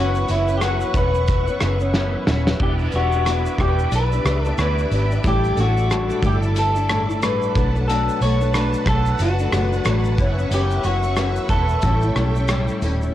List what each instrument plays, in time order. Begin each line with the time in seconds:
Already playing: fingered electric bass F#1, nylon-string guitar F#2 E3 B3 C#4, string machine B4 E5 F#5 C#6
0.00 clean electric guitar F#4
0.15 shaker
0.27 fingered electric bass F#1, nylon-string guitar F#2 E3 B3 C#4, clean electric guitar E4, closed hi-hat, shaker
0.47 nylon-string guitar E3 B3 C#4, shaker
0.57 nylon-string guitar F#2, clean electric guitar G4, cross-stick, closed hi-hat, shaker
0.62 nylon-string guitar E3 B3 C#4, clean electric guitar F#4
0.80 shaker
0.94 fingered electric bass E1, nylon-string guitar F#2 E3 B3 C#4, clean electric guitar B4, kick, closed hi-hat, shaker
1.14 shaker
1.28 kick, closed hi-hat, shaker
1.47 nylon-string guitar E3 B3 C#4, shaker
1.60 fingered electric bass F#1, nylon-string guitar F#2 E3 B3 C#4, cross-stick, closed hi-hat, shaker
1.80 nylon-string guitar E3 B3 C#4, shaker
1.94 nylon-string guitar F#2 E3 B3 C#4, snare
2.26 fingered electric bass D#1, nylon-string guitar F#2 E3 B3 C#4, snare
2.46 nylon-string guitar E3 B3 C#4, snare
2.59 fingered electric bass E1, nylon-string guitar E3 B3 D4 G4, clean electric guitar G4, string machine B4 D5 D6, kick, crash
2.79 shaker
2.92 fingered electric bass E1, nylon-string guitar E3 B3 D4 G4, clean electric guitar F#4, closed hi-hat, shaker
3.12 nylon-string guitar B3 D4 G4, shaker
3.26 nylon-string guitar E3 B3 D4, cross-stick, closed hi-hat, shaker
3.46 shaker
3.59 fingered electric bass E1, nylon-string guitar E3 B3 D4, clean electric guitar G4, kick, cross-stick, closed hi-hat, shaker
3.63 nylon-string guitar G4
3.79 shaker
3.92 fingered electric bass B1, clean electric guitar B4, closed hi-hat, shaker
4.12 nylon-string guitar B3 D4 G4, shaker
4.25 fingered electric bass C#2, nylon-string guitar E3 B3 D4, cross-stick, closed hi-hat, shaker
4.29 nylon-string guitar G4
4.45 nylon-string guitar B3 D4 G4, clean electric guitar A4, shaker
4.58 fingered electric bass D2, nylon-string guitar E3 B3 D4 G4, clean electric guitar B4, cross-stick, closed hi-hat, shaker
4.79 shaker
4.91 fingered electric bass G#1, nylon-string guitar E3 B3 D4 G4, closed hi-hat, shaker
5.10 nylon-string guitar B3 D4 G4, shaker
5.23 fingered electric bass A1, nylon-string guitar A2 G3 D4 E4, string machine A4, kick, closed hi-hat, shaker
5.27 clean electric guitar G4
5.44 shaker
5.56 fingered electric bass A1, nylon-string guitar A2 G3 D4 E4, closed hi-hat, shaker
5.60 clean electric guitar F#4
5.76 nylon-string guitar G3 D4 E4, shaker
5.90 nylon-string guitar A2 G3 D4 E4, cross-stick, closed hi-hat, shaker
6.10 shaker
6.22 fingered electric bass G1, nylon-string guitar A2 G3 D4 E4, clean electric guitar G4, kick, closed hi-hat, shaker
6.42 shaker
6.56 clean electric guitar A4, closed hi-hat, shaker
6.75 nylon-string guitar G3 D4 E4, shaker
6.88 nylon-string guitar A2 G3 D4 E4, cross-stick, closed hi-hat, shaker
7.08 nylon-string guitar G3 D4 E4, shaker
7.22 nylon-string guitar A2 G3 D4 E4, clean electric guitar B4, cross-stick, closed hi-hat, shaker
7.42 shaker
7.55 fingered electric bass B1, nylon-string guitar B2 F#3 A3 D4, string machine B4 F#5 A5, kick, closed hi-hat, shaker
7.75 nylon-string guitar F#3 A3 D4, shaker
7.88 nylon-string guitar B2 F#3 A3 D4, clean electric guitar A4, closed hi-hat, shaker
8.09 shaker
8.21 fingered electric bass B1, nylon-string guitar B2 F#3 A3 D4, clean electric guitar C#5, closed hi-hat, shaker
8.40 nylon-string guitar F#3 A3 D4, shaker
8.54 nylon-string guitar B2 F#3 A3 D4, clean electric guitar B4, cross-stick, closed hi-hat, shaker
8.74 shaker
8.86 fingered electric bass B1, nylon-string guitar B2 F#3 A3 D4, clean electric guitar A4, kick, cross-stick, closed hi-hat, shaker
9.06 shaker
9.19 fingered electric bass F#1, clean electric guitar F#4, closed hi-hat, shaker
9.39 nylon-string guitar A3 D4, shaker
9.43 nylon-string guitar F#3
9.52 fingered electric bass F#1, nylon-string guitar B2 F#3 A3 D4, cross-stick, closed hi-hat, shaker
9.71 nylon-string guitar F#3 A3 D4, shaker
9.85 fingered electric bass A1, nylon-string guitar B2 F#3 A3 D4, cross-stick, closed hi-hat, shaker
10.05 shaker
10.17 fingered electric bass F#1, nylon-string guitar F#2 E3 B3 C#4, string machine E5 C#6, kick, closed hi-hat, shaker
10.37 nylon-string guitar E3 B3 C#4, shaker
10.51 fingered electric bass F#1, nylon-string guitar F#2 E3 B3 C#4, clean electric guitar G4, closed hi-hat, shaker
10.71 shaker
10.83 fingered electric bass F#1, nylon-string guitar F#2 E3 B3 C#4, clean electric guitar F#4, closed hi-hat, shaker
11.03 nylon-string guitar E3 B3 C#4, shaker
11.16 nylon-string guitar F#2 E3 B3 C#4, cross-stick, closed hi-hat, shaker
11.36 shaker
11.48 fingered electric bass E1, nylon-string guitar F#2 E3 B3 C#4, clean electric guitar A4, kick, closed hi-hat, shaker
11.69 shaker
11.82 fingered electric bass A1, nylon-string guitar A2 G3 C#4 E4, string machine A4 G5, kick, closed hi-hat, shaker
12.02 nylon-string guitar C#4 E4, shaker
12.06 nylon-string guitar G3
12.15 fingered electric bass B1, nylon-string guitar A2 G3 C#4 E4, cross-stick, closed hi-hat, shaker
12.35 nylon-string guitar G3 C#4 E4, shaker
12.48 nylon-string guitar A2 G3 C#4 E4, cross-stick, closed hi-hat, shaker
12.68 shaker
12.82 fingered electric bass D#1, nylon-string guitar A2 G3 C#4 E4, closed hi-hat, shaker
13.02 nylon-string guitar G3 C#4 E4, shaker